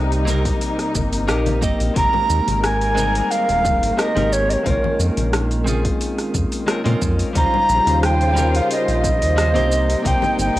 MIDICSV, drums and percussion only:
0, 0, Header, 1, 2, 480
1, 0, Start_track
1, 0, Tempo, 674157
1, 1396, Time_signature, 4, 2, 24, 8
1, 7544, End_track
2, 0, Start_track
2, 0, Title_t, "Drums"
2, 85, Note_on_c, 9, 46, 27
2, 85, Note_on_c, 9, 82, 33
2, 156, Note_off_c, 9, 46, 0
2, 156, Note_off_c, 9, 82, 0
2, 197, Note_on_c, 9, 82, 75
2, 199, Note_on_c, 9, 63, 93
2, 268, Note_off_c, 9, 82, 0
2, 270, Note_off_c, 9, 63, 0
2, 322, Note_on_c, 9, 36, 106
2, 323, Note_on_c, 9, 46, 39
2, 323, Note_on_c, 9, 82, 34
2, 394, Note_off_c, 9, 36, 0
2, 394, Note_off_c, 9, 46, 0
2, 394, Note_off_c, 9, 82, 0
2, 436, Note_on_c, 9, 46, 51
2, 437, Note_on_c, 9, 82, 44
2, 508, Note_off_c, 9, 46, 0
2, 508, Note_off_c, 9, 82, 0
2, 562, Note_on_c, 9, 37, 30
2, 562, Note_on_c, 9, 46, 29
2, 563, Note_on_c, 9, 82, 30
2, 634, Note_off_c, 9, 37, 0
2, 634, Note_off_c, 9, 46, 0
2, 634, Note_off_c, 9, 82, 0
2, 676, Note_on_c, 9, 36, 67
2, 676, Note_on_c, 9, 82, 83
2, 678, Note_on_c, 9, 63, 74
2, 747, Note_off_c, 9, 36, 0
2, 747, Note_off_c, 9, 82, 0
2, 749, Note_off_c, 9, 63, 0
2, 802, Note_on_c, 9, 46, 43
2, 802, Note_on_c, 9, 82, 36
2, 873, Note_off_c, 9, 46, 0
2, 873, Note_off_c, 9, 82, 0
2, 915, Note_on_c, 9, 37, 99
2, 915, Note_on_c, 9, 46, 50
2, 915, Note_on_c, 9, 82, 46
2, 986, Note_off_c, 9, 37, 0
2, 986, Note_off_c, 9, 46, 0
2, 987, Note_off_c, 9, 82, 0
2, 1040, Note_on_c, 9, 63, 92
2, 1041, Note_on_c, 9, 64, 86
2, 1042, Note_on_c, 9, 46, 30
2, 1042, Note_on_c, 9, 82, 29
2, 1044, Note_on_c, 9, 60, 34
2, 1111, Note_off_c, 9, 63, 0
2, 1113, Note_off_c, 9, 46, 0
2, 1113, Note_off_c, 9, 64, 0
2, 1113, Note_off_c, 9, 82, 0
2, 1115, Note_off_c, 9, 60, 0
2, 1151, Note_on_c, 9, 60, 64
2, 1156, Note_on_c, 9, 36, 107
2, 1156, Note_on_c, 9, 82, 78
2, 1222, Note_off_c, 9, 60, 0
2, 1227, Note_off_c, 9, 36, 0
2, 1228, Note_off_c, 9, 82, 0
2, 1283, Note_on_c, 9, 46, 42
2, 1283, Note_on_c, 9, 82, 36
2, 1354, Note_off_c, 9, 46, 0
2, 1355, Note_off_c, 9, 82, 0
2, 1396, Note_on_c, 9, 36, 120
2, 1397, Note_on_c, 9, 46, 55
2, 1397, Note_on_c, 9, 63, 94
2, 1397, Note_on_c, 9, 82, 40
2, 1467, Note_off_c, 9, 36, 0
2, 1468, Note_off_c, 9, 46, 0
2, 1468, Note_off_c, 9, 63, 0
2, 1468, Note_off_c, 9, 82, 0
2, 1517, Note_on_c, 9, 60, 57
2, 1520, Note_on_c, 9, 64, 88
2, 1589, Note_off_c, 9, 60, 0
2, 1591, Note_off_c, 9, 64, 0
2, 1636, Note_on_c, 9, 82, 79
2, 1708, Note_off_c, 9, 82, 0
2, 1761, Note_on_c, 9, 63, 64
2, 1764, Note_on_c, 9, 46, 44
2, 1765, Note_on_c, 9, 82, 34
2, 1832, Note_off_c, 9, 63, 0
2, 1835, Note_off_c, 9, 46, 0
2, 1836, Note_off_c, 9, 82, 0
2, 1878, Note_on_c, 9, 37, 96
2, 1878, Note_on_c, 9, 46, 52
2, 1878, Note_on_c, 9, 82, 42
2, 1949, Note_off_c, 9, 37, 0
2, 1949, Note_off_c, 9, 46, 0
2, 1949, Note_off_c, 9, 82, 0
2, 2004, Note_on_c, 9, 46, 29
2, 2005, Note_on_c, 9, 82, 31
2, 2076, Note_off_c, 9, 46, 0
2, 2076, Note_off_c, 9, 82, 0
2, 2119, Note_on_c, 9, 82, 79
2, 2121, Note_on_c, 9, 63, 81
2, 2191, Note_off_c, 9, 82, 0
2, 2192, Note_off_c, 9, 63, 0
2, 2245, Note_on_c, 9, 46, 44
2, 2246, Note_on_c, 9, 82, 33
2, 2317, Note_off_c, 9, 46, 0
2, 2317, Note_off_c, 9, 82, 0
2, 2360, Note_on_c, 9, 46, 52
2, 2360, Note_on_c, 9, 82, 45
2, 2431, Note_off_c, 9, 46, 0
2, 2431, Note_off_c, 9, 82, 0
2, 2485, Note_on_c, 9, 46, 30
2, 2485, Note_on_c, 9, 82, 33
2, 2556, Note_off_c, 9, 46, 0
2, 2556, Note_off_c, 9, 82, 0
2, 2597, Note_on_c, 9, 36, 111
2, 2601, Note_on_c, 9, 63, 69
2, 2601, Note_on_c, 9, 82, 72
2, 2668, Note_off_c, 9, 36, 0
2, 2672, Note_off_c, 9, 63, 0
2, 2672, Note_off_c, 9, 82, 0
2, 2727, Note_on_c, 9, 46, 44
2, 2727, Note_on_c, 9, 82, 32
2, 2798, Note_off_c, 9, 46, 0
2, 2799, Note_off_c, 9, 82, 0
2, 2840, Note_on_c, 9, 37, 97
2, 2840, Note_on_c, 9, 46, 56
2, 2840, Note_on_c, 9, 82, 44
2, 2911, Note_off_c, 9, 37, 0
2, 2911, Note_off_c, 9, 46, 0
2, 2911, Note_off_c, 9, 82, 0
2, 2964, Note_on_c, 9, 60, 34
2, 2967, Note_on_c, 9, 46, 29
2, 2967, Note_on_c, 9, 63, 96
2, 2967, Note_on_c, 9, 64, 96
2, 3035, Note_off_c, 9, 60, 0
2, 3038, Note_off_c, 9, 46, 0
2, 3038, Note_off_c, 9, 63, 0
2, 3038, Note_off_c, 9, 64, 0
2, 3081, Note_on_c, 9, 82, 83
2, 3152, Note_off_c, 9, 82, 0
2, 3206, Note_on_c, 9, 46, 42
2, 3207, Note_on_c, 9, 82, 33
2, 3277, Note_off_c, 9, 46, 0
2, 3278, Note_off_c, 9, 82, 0
2, 3316, Note_on_c, 9, 63, 94
2, 3317, Note_on_c, 9, 36, 121
2, 3318, Note_on_c, 9, 46, 52
2, 3319, Note_on_c, 9, 82, 41
2, 3387, Note_off_c, 9, 63, 0
2, 3388, Note_off_c, 9, 36, 0
2, 3389, Note_off_c, 9, 46, 0
2, 3390, Note_off_c, 9, 82, 0
2, 3447, Note_on_c, 9, 64, 83
2, 3518, Note_off_c, 9, 64, 0
2, 3559, Note_on_c, 9, 82, 73
2, 3630, Note_off_c, 9, 82, 0
2, 3683, Note_on_c, 9, 46, 44
2, 3683, Note_on_c, 9, 82, 31
2, 3684, Note_on_c, 9, 63, 61
2, 3754, Note_off_c, 9, 46, 0
2, 3754, Note_off_c, 9, 82, 0
2, 3755, Note_off_c, 9, 63, 0
2, 3796, Note_on_c, 9, 37, 97
2, 3796, Note_on_c, 9, 46, 54
2, 3797, Note_on_c, 9, 82, 44
2, 3799, Note_on_c, 9, 60, 56
2, 3868, Note_off_c, 9, 37, 0
2, 3868, Note_off_c, 9, 46, 0
2, 3868, Note_off_c, 9, 82, 0
2, 3871, Note_off_c, 9, 60, 0
2, 3922, Note_on_c, 9, 46, 31
2, 3922, Note_on_c, 9, 82, 29
2, 3993, Note_off_c, 9, 46, 0
2, 3994, Note_off_c, 9, 82, 0
2, 4037, Note_on_c, 9, 82, 79
2, 4040, Note_on_c, 9, 63, 81
2, 4108, Note_off_c, 9, 82, 0
2, 4111, Note_off_c, 9, 63, 0
2, 4163, Note_on_c, 9, 36, 97
2, 4163, Note_on_c, 9, 46, 43
2, 4163, Note_on_c, 9, 82, 32
2, 4234, Note_off_c, 9, 36, 0
2, 4234, Note_off_c, 9, 46, 0
2, 4235, Note_off_c, 9, 82, 0
2, 4277, Note_on_c, 9, 46, 56
2, 4277, Note_on_c, 9, 82, 41
2, 4348, Note_off_c, 9, 46, 0
2, 4348, Note_off_c, 9, 82, 0
2, 4403, Note_on_c, 9, 37, 29
2, 4403, Note_on_c, 9, 46, 32
2, 4403, Note_on_c, 9, 82, 31
2, 4474, Note_off_c, 9, 37, 0
2, 4474, Note_off_c, 9, 46, 0
2, 4474, Note_off_c, 9, 82, 0
2, 4513, Note_on_c, 9, 63, 56
2, 4516, Note_on_c, 9, 36, 62
2, 4517, Note_on_c, 9, 82, 77
2, 4584, Note_off_c, 9, 63, 0
2, 4587, Note_off_c, 9, 36, 0
2, 4588, Note_off_c, 9, 82, 0
2, 4642, Note_on_c, 9, 46, 47
2, 4642, Note_on_c, 9, 82, 35
2, 4713, Note_off_c, 9, 46, 0
2, 4714, Note_off_c, 9, 82, 0
2, 4755, Note_on_c, 9, 37, 95
2, 4755, Note_on_c, 9, 46, 58
2, 4755, Note_on_c, 9, 82, 43
2, 4826, Note_off_c, 9, 37, 0
2, 4826, Note_off_c, 9, 46, 0
2, 4827, Note_off_c, 9, 82, 0
2, 4881, Note_on_c, 9, 46, 28
2, 4882, Note_on_c, 9, 63, 95
2, 4883, Note_on_c, 9, 60, 36
2, 4889, Note_on_c, 9, 64, 96
2, 4952, Note_off_c, 9, 46, 0
2, 4953, Note_off_c, 9, 63, 0
2, 4954, Note_off_c, 9, 60, 0
2, 4960, Note_off_c, 9, 64, 0
2, 4995, Note_on_c, 9, 36, 107
2, 4995, Note_on_c, 9, 60, 63
2, 4996, Note_on_c, 9, 82, 78
2, 5066, Note_off_c, 9, 60, 0
2, 5067, Note_off_c, 9, 36, 0
2, 5067, Note_off_c, 9, 82, 0
2, 5121, Note_on_c, 9, 46, 45
2, 5121, Note_on_c, 9, 82, 33
2, 5192, Note_off_c, 9, 46, 0
2, 5192, Note_off_c, 9, 82, 0
2, 5235, Note_on_c, 9, 36, 117
2, 5236, Note_on_c, 9, 46, 57
2, 5236, Note_on_c, 9, 82, 44
2, 5246, Note_on_c, 9, 63, 88
2, 5307, Note_off_c, 9, 36, 0
2, 5307, Note_off_c, 9, 46, 0
2, 5308, Note_off_c, 9, 82, 0
2, 5317, Note_off_c, 9, 63, 0
2, 5367, Note_on_c, 9, 60, 58
2, 5368, Note_on_c, 9, 64, 82
2, 5438, Note_off_c, 9, 60, 0
2, 5439, Note_off_c, 9, 64, 0
2, 5476, Note_on_c, 9, 82, 76
2, 5548, Note_off_c, 9, 82, 0
2, 5604, Note_on_c, 9, 46, 44
2, 5604, Note_on_c, 9, 82, 32
2, 5605, Note_on_c, 9, 63, 59
2, 5675, Note_off_c, 9, 46, 0
2, 5675, Note_off_c, 9, 82, 0
2, 5677, Note_off_c, 9, 63, 0
2, 5718, Note_on_c, 9, 37, 101
2, 5718, Note_on_c, 9, 46, 57
2, 5719, Note_on_c, 9, 82, 42
2, 5789, Note_off_c, 9, 37, 0
2, 5789, Note_off_c, 9, 46, 0
2, 5790, Note_off_c, 9, 82, 0
2, 5845, Note_on_c, 9, 46, 31
2, 5845, Note_on_c, 9, 82, 31
2, 5916, Note_off_c, 9, 46, 0
2, 5916, Note_off_c, 9, 82, 0
2, 5958, Note_on_c, 9, 82, 75
2, 5962, Note_on_c, 9, 63, 83
2, 6029, Note_off_c, 9, 82, 0
2, 6033, Note_off_c, 9, 63, 0
2, 6086, Note_on_c, 9, 46, 46
2, 6086, Note_on_c, 9, 82, 33
2, 6157, Note_off_c, 9, 46, 0
2, 6157, Note_off_c, 9, 82, 0
2, 6200, Note_on_c, 9, 46, 58
2, 6200, Note_on_c, 9, 82, 40
2, 6271, Note_off_c, 9, 46, 0
2, 6271, Note_off_c, 9, 82, 0
2, 6325, Note_on_c, 9, 46, 34
2, 6325, Note_on_c, 9, 82, 30
2, 6396, Note_off_c, 9, 46, 0
2, 6397, Note_off_c, 9, 82, 0
2, 6434, Note_on_c, 9, 63, 66
2, 6435, Note_on_c, 9, 36, 102
2, 6439, Note_on_c, 9, 82, 78
2, 6506, Note_off_c, 9, 36, 0
2, 6506, Note_off_c, 9, 63, 0
2, 6510, Note_off_c, 9, 82, 0
2, 6565, Note_on_c, 9, 46, 47
2, 6566, Note_on_c, 9, 82, 32
2, 6636, Note_off_c, 9, 46, 0
2, 6637, Note_off_c, 9, 82, 0
2, 6678, Note_on_c, 9, 37, 101
2, 6678, Note_on_c, 9, 46, 61
2, 6679, Note_on_c, 9, 82, 46
2, 6750, Note_off_c, 9, 37, 0
2, 6750, Note_off_c, 9, 46, 0
2, 6750, Note_off_c, 9, 82, 0
2, 6802, Note_on_c, 9, 60, 37
2, 6802, Note_on_c, 9, 64, 90
2, 6803, Note_on_c, 9, 63, 85
2, 6806, Note_on_c, 9, 46, 31
2, 6873, Note_off_c, 9, 60, 0
2, 6873, Note_off_c, 9, 64, 0
2, 6874, Note_off_c, 9, 63, 0
2, 6877, Note_off_c, 9, 46, 0
2, 6919, Note_on_c, 9, 82, 74
2, 6990, Note_off_c, 9, 82, 0
2, 7047, Note_on_c, 9, 46, 46
2, 7047, Note_on_c, 9, 82, 30
2, 7118, Note_off_c, 9, 46, 0
2, 7118, Note_off_c, 9, 82, 0
2, 7156, Note_on_c, 9, 36, 116
2, 7156, Note_on_c, 9, 63, 86
2, 7161, Note_on_c, 9, 46, 58
2, 7161, Note_on_c, 9, 82, 44
2, 7227, Note_off_c, 9, 36, 0
2, 7227, Note_off_c, 9, 63, 0
2, 7232, Note_off_c, 9, 46, 0
2, 7232, Note_off_c, 9, 82, 0
2, 7277, Note_on_c, 9, 60, 61
2, 7279, Note_on_c, 9, 64, 102
2, 7287, Note_on_c, 9, 82, 30
2, 7348, Note_off_c, 9, 60, 0
2, 7351, Note_off_c, 9, 64, 0
2, 7358, Note_off_c, 9, 82, 0
2, 7398, Note_on_c, 9, 82, 75
2, 7470, Note_off_c, 9, 82, 0
2, 7519, Note_on_c, 9, 63, 63
2, 7544, Note_off_c, 9, 63, 0
2, 7544, End_track
0, 0, End_of_file